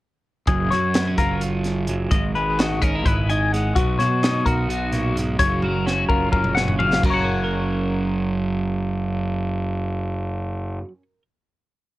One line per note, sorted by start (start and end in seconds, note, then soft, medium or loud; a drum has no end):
0.47 0.69 F#1 loud
0.47 1.88 F#2 medium
0.47 0.71 G#4 medium
0.47 kick loud
0.47 closed hi-hat medium
0.71 1.15 F#2 medium
0.71 2.35 F#3 medium
0.71 1.18 C#5 medium
0.71 snare soft
0.71 closed hi-hat medium
0.94 1.07 B3 medium
0.94 snare loud
0.94 closed hi-hat medium
1.07 2.12 C#4 soft
1.18 2.08 F#1 medium
1.18 2.09 F4 medium
1.18 1.41 A#4 medium
1.18 kick medium
1.18 snare soft
1.18 closed hi-hat medium
1.41 closed hi-hat medium
1.64 snare soft
1.64 closed hi-hat medium
1.88 2.12 F#2 medium
1.88 closed hi-hat medium
2.11 2.78 G#1 loud
2.11 3.05 G#2 medium
2.11 2.35 D#5 medium
2.11 kick loud
2.11 closed hi-hat medium
2.35 3.53 G#3 medium
2.35 2.58 B4 medium
2.35 closed hi-hat medium
2.59 3.30 D#4 medium
2.59 2.81 F#4 medium
2.59 snare loud
2.59 closed hi-hat medium
2.81 3.04 G#1 medium
2.81 2.95 C#4 medium
2.81 3.05 A#4 medium
2.81 kick medium
2.81 closed hi-hat medium
2.95 3.76 E4 soft
3.05 3.72 G#1 medium
3.05 3.73 G#2 medium
3.05 3.29 B4 medium
3.05 kick loud
3.05 closed hi-hat medium
3.29 3.74 D#4 medium
3.29 3.52 G#5 medium
3.29 closed hi-hat medium
3.52 3.74 G#3 medium
3.52 3.75 F#5 medium
3.52 snare soft
3.52 closed hi-hat medium
3.75 3.98 B1 loud
3.75 4.68 B2 medium
3.75 3.99 F#4 medium
3.75 kick loud
3.75 closed hi-hat medium
3.99 4.42 B2 medium
3.99 5.63 F#3 medium
3.99 4.46 C#5 medium
3.99 snare soft
3.99 closed hi-hat medium
4.23 5.37 D#4 medium
4.23 snare loud
4.23 closed hi-hat medium
4.46 5.36 B1 medium
4.46 6.11 F#4 medium
4.46 4.69 A#4 medium
4.46 kick medium
4.46 closed hi-hat medium
4.69 4.92 B2 medium
4.69 5.16 F#4 medium
4.69 closed hi-hat medium
4.93 5.15 A#2 medium
4.93 snare soft
4.93 closed hi-hat medium
5.15 5.39 G#2 medium
5.15 snare soft
5.15 closed hi-hat medium
5.39 6.06 F#1 loud
5.39 7.03 F#2 medium
5.39 5.63 C#5 medium
5.39 kick loud
5.39 closed hi-hat medium
5.63 6.78 F#3 medium
5.63 5.86 A#4 medium
5.63 high tom soft
5.86 6.56 C#4 medium
5.86 6.08 F#4 medium
5.86 snare medium
6.09 6.31 F#1 medium
6.09 7.01 F4 medium
6.09 6.31 A#4 medium
6.09 kick medium
6.32 6.99 F#1 medium
6.32 6.79 C#3 medium
6.32 6.56 A#4 medium
6.32 kick loud
6.44 mid tom medium
6.55 7.01 C#4 medium
6.55 6.79 F#5 medium
6.55 snare medium
6.68 floor tom medium
6.79 7.13 F#3 medium
6.79 7.03 F5 medium
6.79 floor tom medium
6.93 snare medium
7.04 10.78 F#1 medium
7.04 10.82 F#2 medium
7.04 10.80 A#4 medium
7.04 kick medium
7.04 crash medium
7.10 10.92 F#3 medium
7.10 10.84 C#5 medium
7.10 10.88 F#5 medium
7.24 11.02 C#4 medium
7.44 11.22 A#4 medium